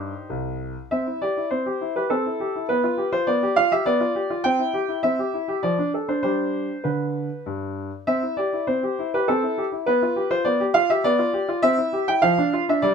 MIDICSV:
0, 0, Header, 1, 2, 480
1, 0, Start_track
1, 0, Key_signature, 0, "major"
1, 0, Tempo, 614754
1, 718, Time_signature, 3, 2, 24, 8
1, 1185, Tempo, 587659
1, 4545, Tempo, 609137
1, 6945, Tempo, 592885
1, 10400, End_track
2, 0, Start_track
2, 0, Title_t, "Grand piano"
2, 0, Program_c, 0, 0
2, 0, Note_on_c, 0, 43, 43
2, 0, Note_on_c, 0, 63, 52
2, 0, Note_on_c, 0, 67, 54
2, 0, Note_on_c, 0, 72, 64
2, 85, Note_off_c, 0, 43, 0
2, 201, Note_off_c, 0, 63, 0
2, 201, Note_off_c, 0, 67, 0
2, 228, Note_off_c, 0, 72, 0
2, 231, Note_on_c, 0, 36, 46
2, 572, Note_off_c, 0, 36, 0
2, 711, Note_on_c, 0, 76, 65
2, 718, Note_on_c, 0, 60, 49
2, 832, Note_off_c, 0, 60, 0
2, 834, Note_on_c, 0, 64, 38
2, 949, Note_on_c, 0, 74, 67
2, 950, Note_off_c, 0, 76, 0
2, 954, Note_on_c, 0, 67, 40
2, 958, Note_off_c, 0, 64, 0
2, 1069, Note_on_c, 0, 64, 40
2, 1076, Note_off_c, 0, 67, 0
2, 1160, Note_off_c, 0, 74, 0
2, 1176, Note_on_c, 0, 72, 63
2, 1182, Note_on_c, 0, 60, 42
2, 1191, Note_off_c, 0, 64, 0
2, 1301, Note_off_c, 0, 60, 0
2, 1302, Note_on_c, 0, 67, 43
2, 1425, Note_on_c, 0, 64, 43
2, 1431, Note_off_c, 0, 67, 0
2, 1510, Note_off_c, 0, 72, 0
2, 1546, Note_on_c, 0, 71, 64
2, 1549, Note_on_c, 0, 67, 41
2, 1552, Note_off_c, 0, 64, 0
2, 1660, Note_on_c, 0, 69, 65
2, 1666, Note_on_c, 0, 60, 48
2, 1667, Note_off_c, 0, 71, 0
2, 1675, Note_off_c, 0, 67, 0
2, 1783, Note_off_c, 0, 60, 0
2, 1790, Note_on_c, 0, 64, 39
2, 1907, Note_on_c, 0, 67, 44
2, 1915, Note_off_c, 0, 64, 0
2, 2033, Note_on_c, 0, 64, 41
2, 2034, Note_off_c, 0, 67, 0
2, 2112, Note_off_c, 0, 69, 0
2, 2141, Note_on_c, 0, 71, 72
2, 2150, Note_off_c, 0, 64, 0
2, 2150, Note_on_c, 0, 59, 55
2, 2263, Note_on_c, 0, 65, 46
2, 2265, Note_off_c, 0, 59, 0
2, 2376, Note_on_c, 0, 67, 49
2, 2391, Note_off_c, 0, 65, 0
2, 2471, Note_off_c, 0, 71, 0
2, 2497, Note_on_c, 0, 65, 48
2, 2498, Note_on_c, 0, 72, 75
2, 2507, Note_off_c, 0, 67, 0
2, 2616, Note_on_c, 0, 74, 78
2, 2621, Note_on_c, 0, 59, 54
2, 2622, Note_off_c, 0, 72, 0
2, 2628, Note_off_c, 0, 65, 0
2, 2740, Note_off_c, 0, 59, 0
2, 2746, Note_on_c, 0, 67, 51
2, 2856, Note_on_c, 0, 77, 94
2, 2860, Note_off_c, 0, 74, 0
2, 2864, Note_on_c, 0, 65, 53
2, 2872, Note_off_c, 0, 67, 0
2, 2980, Note_off_c, 0, 77, 0
2, 2982, Note_on_c, 0, 67, 50
2, 2982, Note_on_c, 0, 76, 79
2, 2990, Note_off_c, 0, 65, 0
2, 3097, Note_on_c, 0, 74, 91
2, 3101, Note_on_c, 0, 59, 64
2, 3102, Note_off_c, 0, 76, 0
2, 3108, Note_off_c, 0, 67, 0
2, 3217, Note_on_c, 0, 65, 47
2, 3218, Note_off_c, 0, 59, 0
2, 3339, Note_on_c, 0, 67, 52
2, 3345, Note_off_c, 0, 65, 0
2, 3461, Note_on_c, 0, 65, 52
2, 3465, Note_off_c, 0, 67, 0
2, 3544, Note_off_c, 0, 74, 0
2, 3572, Note_on_c, 0, 79, 97
2, 3580, Note_off_c, 0, 65, 0
2, 3582, Note_on_c, 0, 60, 65
2, 3696, Note_on_c, 0, 64, 51
2, 3697, Note_off_c, 0, 60, 0
2, 3815, Note_on_c, 0, 67, 50
2, 3824, Note_off_c, 0, 64, 0
2, 3935, Note_on_c, 0, 64, 49
2, 3943, Note_off_c, 0, 67, 0
2, 4023, Note_off_c, 0, 79, 0
2, 4054, Note_on_c, 0, 76, 79
2, 4062, Note_on_c, 0, 60, 49
2, 4064, Note_off_c, 0, 64, 0
2, 4178, Note_off_c, 0, 60, 0
2, 4186, Note_on_c, 0, 67, 49
2, 4304, Note_on_c, 0, 64, 50
2, 4311, Note_off_c, 0, 67, 0
2, 4424, Note_on_c, 0, 67, 47
2, 4431, Note_off_c, 0, 64, 0
2, 4511, Note_off_c, 0, 76, 0
2, 4543, Note_on_c, 0, 74, 78
2, 4546, Note_off_c, 0, 67, 0
2, 4548, Note_on_c, 0, 53, 59
2, 4662, Note_off_c, 0, 53, 0
2, 4667, Note_on_c, 0, 62, 39
2, 4757, Note_off_c, 0, 74, 0
2, 4789, Note_on_c, 0, 69, 42
2, 4790, Note_off_c, 0, 62, 0
2, 4903, Note_on_c, 0, 62, 41
2, 4903, Note_on_c, 0, 72, 58
2, 4911, Note_off_c, 0, 69, 0
2, 5003, Note_off_c, 0, 72, 0
2, 5010, Note_off_c, 0, 62, 0
2, 5015, Note_on_c, 0, 72, 69
2, 5022, Note_on_c, 0, 62, 39
2, 5022, Note_on_c, 0, 67, 37
2, 5023, Note_on_c, 0, 55, 43
2, 5361, Note_off_c, 0, 55, 0
2, 5409, Note_off_c, 0, 62, 0
2, 5409, Note_off_c, 0, 67, 0
2, 5496, Note_on_c, 0, 71, 49
2, 5502, Note_off_c, 0, 72, 0
2, 5502, Note_on_c, 0, 50, 41
2, 5841, Note_off_c, 0, 50, 0
2, 5984, Note_off_c, 0, 71, 0
2, 5988, Note_on_c, 0, 43, 45
2, 6326, Note_off_c, 0, 43, 0
2, 6468, Note_on_c, 0, 76, 78
2, 6470, Note_on_c, 0, 60, 54
2, 6586, Note_off_c, 0, 60, 0
2, 6590, Note_on_c, 0, 64, 39
2, 6702, Note_on_c, 0, 74, 68
2, 6708, Note_off_c, 0, 76, 0
2, 6714, Note_on_c, 0, 67, 44
2, 6715, Note_off_c, 0, 64, 0
2, 6829, Note_on_c, 0, 64, 43
2, 6836, Note_off_c, 0, 67, 0
2, 6919, Note_off_c, 0, 74, 0
2, 6941, Note_on_c, 0, 72, 62
2, 6948, Note_on_c, 0, 60, 44
2, 6953, Note_off_c, 0, 64, 0
2, 7065, Note_off_c, 0, 60, 0
2, 7071, Note_on_c, 0, 67, 46
2, 7197, Note_off_c, 0, 67, 0
2, 7198, Note_on_c, 0, 64, 47
2, 7275, Note_off_c, 0, 72, 0
2, 7321, Note_off_c, 0, 64, 0
2, 7321, Note_on_c, 0, 71, 71
2, 7322, Note_on_c, 0, 67, 45
2, 7434, Note_on_c, 0, 69, 75
2, 7436, Note_off_c, 0, 71, 0
2, 7443, Note_off_c, 0, 67, 0
2, 7443, Note_on_c, 0, 60, 52
2, 7554, Note_off_c, 0, 60, 0
2, 7554, Note_on_c, 0, 64, 41
2, 7676, Note_on_c, 0, 67, 45
2, 7679, Note_off_c, 0, 64, 0
2, 7720, Note_off_c, 0, 69, 0
2, 7789, Note_on_c, 0, 64, 44
2, 7799, Note_off_c, 0, 67, 0
2, 7906, Note_on_c, 0, 71, 79
2, 7909, Note_off_c, 0, 64, 0
2, 7914, Note_on_c, 0, 59, 60
2, 8028, Note_off_c, 0, 59, 0
2, 8037, Note_on_c, 0, 65, 47
2, 8146, Note_on_c, 0, 67, 47
2, 8158, Note_off_c, 0, 65, 0
2, 8264, Note_on_c, 0, 65, 53
2, 8265, Note_off_c, 0, 71, 0
2, 8265, Note_on_c, 0, 72, 79
2, 8272, Note_off_c, 0, 67, 0
2, 8377, Note_on_c, 0, 74, 84
2, 8384, Note_off_c, 0, 72, 0
2, 8385, Note_on_c, 0, 59, 49
2, 8390, Note_off_c, 0, 65, 0
2, 8501, Note_off_c, 0, 59, 0
2, 8504, Note_on_c, 0, 67, 53
2, 8523, Note_off_c, 0, 74, 0
2, 8616, Note_on_c, 0, 77, 97
2, 8621, Note_on_c, 0, 65, 55
2, 8629, Note_off_c, 0, 67, 0
2, 8739, Note_off_c, 0, 77, 0
2, 8744, Note_on_c, 0, 76, 83
2, 8746, Note_on_c, 0, 67, 51
2, 8747, Note_off_c, 0, 65, 0
2, 8860, Note_on_c, 0, 74, 97
2, 8862, Note_off_c, 0, 76, 0
2, 8865, Note_on_c, 0, 59, 61
2, 8869, Note_off_c, 0, 67, 0
2, 8978, Note_off_c, 0, 59, 0
2, 8979, Note_on_c, 0, 65, 47
2, 9097, Note_on_c, 0, 67, 55
2, 9104, Note_off_c, 0, 65, 0
2, 9220, Note_on_c, 0, 65, 54
2, 9222, Note_off_c, 0, 67, 0
2, 9303, Note_off_c, 0, 74, 0
2, 9332, Note_on_c, 0, 76, 105
2, 9337, Note_off_c, 0, 65, 0
2, 9338, Note_on_c, 0, 60, 72
2, 9452, Note_off_c, 0, 60, 0
2, 9455, Note_on_c, 0, 64, 54
2, 9578, Note_on_c, 0, 67, 54
2, 9581, Note_off_c, 0, 64, 0
2, 9692, Note_off_c, 0, 76, 0
2, 9700, Note_on_c, 0, 79, 90
2, 9702, Note_off_c, 0, 67, 0
2, 9702, Note_on_c, 0, 64, 56
2, 9812, Note_on_c, 0, 77, 92
2, 9818, Note_off_c, 0, 64, 0
2, 9818, Note_off_c, 0, 79, 0
2, 9820, Note_on_c, 0, 53, 70
2, 9935, Note_off_c, 0, 53, 0
2, 9946, Note_on_c, 0, 62, 56
2, 10067, Note_on_c, 0, 65, 57
2, 10069, Note_off_c, 0, 62, 0
2, 10146, Note_off_c, 0, 77, 0
2, 10191, Note_off_c, 0, 65, 0
2, 10193, Note_on_c, 0, 62, 52
2, 10196, Note_on_c, 0, 76, 78
2, 10301, Note_on_c, 0, 74, 87
2, 10307, Note_on_c, 0, 55, 69
2, 10310, Note_off_c, 0, 62, 0
2, 10312, Note_off_c, 0, 76, 0
2, 10400, Note_off_c, 0, 55, 0
2, 10400, Note_off_c, 0, 74, 0
2, 10400, End_track
0, 0, End_of_file